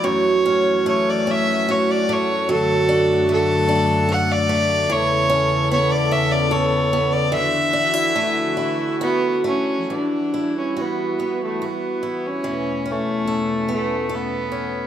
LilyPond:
<<
  \new Staff \with { instrumentName = "Fiddle" } { \time 3/4 \key e \dorian \tempo 4 = 73 cis''4 cis''16 d''16 e''8 cis''16 d''16 cis''8 | a'4 a'4 fis''16 d''8. | cis''4 cis''16 d''16 e''16 d''16 cis''8. d''16 | e''2 b8 cis'8 |
d'8. cis'16 b8. a16 b8. cis'16~ | cis'8 a4 a8 b4 | }
  \new Staff \with { instrumentName = "Steel-string acoustic guitar" } { \time 3/4 \key e \dorian fis,8 cis'8 a8 cis'8 fis'8 a8 | fis8 d'8 a8 d'8 a'8 a8 | e8 cis'8 b8 cis'8 a'8 b8 | d8 d'16 e'16 a8 e'8 fis'8 a8 |
e8 e'8 fis'8 b8 fis'8 e'8 | e8 cis'8 a'8 b8 a'8 cis'8 | }
  \new Staff \with { instrumentName = "String section" } { \clef bass \time 3/4 \key e \dorian << { fis'2.~ | fis'2. | a'2. | fis'2. |
fis'2. | cis'2. | } \\ { <e a>2. | <fis, d a>2. | <e, cis b>2. | <d e>2. |
<e g>2. | <e, b, a>2. | } >> }
>>